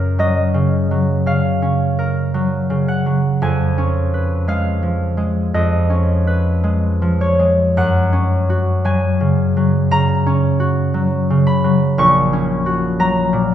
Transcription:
Already playing: F#2 F#3 C#4 A#4 C#5
0.19 F#3 D#5
0.54 C#3
0.91 F#3
1.26 C#3 F5
1.62 C#4
1.99 A#4
2.34 F#3
2.70 C#3
2.88 F#5
3.06 F#3
3.42 F2 G#5
3.78 C#4
4.14 B4
4.48 G#3 F5
4.82 F3
5.17 G#3
5.54 F2 D#5
5.90 C#4
6.27 B4
6.64 G#3
7.02 F3
7.21 C#5
7.39 G#3
7.77 F#2 F#5
8.13 C#4
8.50 F#4
8.85 F#3 G#5
9.21 C#3
9.57 F#3
9.91 C#3 A#5
10.27 C#4
10.60 F#4
10.94 F#3
11.30 C#3
11.47 B5
11.64 F#3
11.98 A#1 C#6
12.33 C#4
12.66 F#4
12.99 F#3 A#5
13.33 A#2

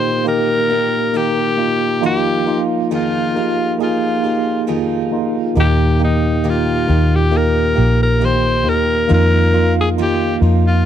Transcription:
Already playing: A#2 D#3 A#3 D#4 F4 G4 C5
0.24 D#3 A#3 D#4 G4 A#4
0.70 A#3 D#4 G4 A#4
1.13 D#3 A#3 D#4 G4 A#4
1.57 A#3 D#4 F4
2.01 F2 D#3 F3 A#3 D#4 F4
2.06 G4
2.46 F3 A#3 D#4 F4
2.90 F2 D#3 F3 A#3 D#4 F4 G#4
2.95 F4
3.34 F3 A#3 D#4 F4 G4
3.78 F3 A#3 D#4 F4 G#4
3.83 F4
4.22 F3 A#3 D#4 F4 G4
4.67 F2 D#3 F3 A#3 D#4 F4 G#4
5.12 A#3 D#4 F4
5.55 D#2 A#2 D#3 A#3 D#4 G4
5.60 G4
5.99 A#3 D#4 G4
6.04 D#4
6.43 D#3 A#3 D#4 G4
6.49 F4
6.87 D#2 A#3 D#4 F4 G4
7.15 G4
7.31 D#3 A#3 D#4 G4
7.37 A#4
7.76 A#1 A#3 D#4 G4
8.03 A#4
8.20 D#3 A#3 D#4 G4
8.25 C5
8.64 D#2 A#3 D#4 G4
8.69 A#4
9.08 F2 D#3 F3 A#3 D#4 F4
9.14 A#4
9.52 F3 A#3 D#4 F4
9.81 G#4
9.96 F2 D#3 F3 A#3 D#4 F4
10.02 G4
10.40 F2 F3 A#3 D#4 F4
10.67 F4

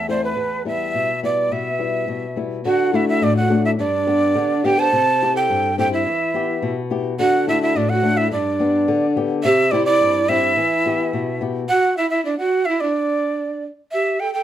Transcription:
Already playing: E2
0.08 A3 C4 E4 C5 D5
0.23 B4
0.36 E2
0.65 G3 B3 E4 E5
0.94 B2
1.23 G3 B3 E4 D5
1.51 B2 E5
1.79 G3 B3 E4
2.08 B2
2.36 G3 B3 E4
2.65 D3 F#4 F#5
2.93 A3 D4 E4 F#4 E5
3.09 E4 E5
3.22 A2 D4 D5
3.37 F#4 F#5
3.50 A3 D4 F#4
3.65 E4 E5
3.79 G2 D4 D5
4.07 B3 D4 G4
4.35 D3
4.64 B3 D4 G4 G5
4.79 C5 A5
4.93 C3
5.22 C4 E4 G4
5.35 A4 G5
5.50 G2
5.78 C4 E4 G4 A4 G5
5.92 E4 E5
6.07 E3
6.34 B3 E4 G4
6.62 B2
6.90 B3 E4 G4
7.19 D3 F#4 F#5
7.47 A3 D4 E4 F#4 E5
7.62 E4 E5
7.75 A2 D4 D5
7.89 F#4 F#5
8.03 A3 D4 F#4
8.17 E4 E5
8.31 G2 D4 D5
8.60 B3 D4 G4
8.88 D3
9.16 B3 D4 G4
9.43 C3 G4 E5
9.71 C4 E4 G4 D5
9.85 E4 D5
10.01 G2
10.29 C4 E4 G4 E5
10.57 E3
10.86 B3 E4 G4
11.13 B2
11.41 B3 E4 G4
11.69 F#4 F#5
11.97 E4 E5
12.10 E4 E5
12.25 D4 D5
12.38 F#4 F#5
12.65 E4 E5
12.80 D4 D5
13.92 G4 E5
14.20 A4 G5
14.34 A4 G5

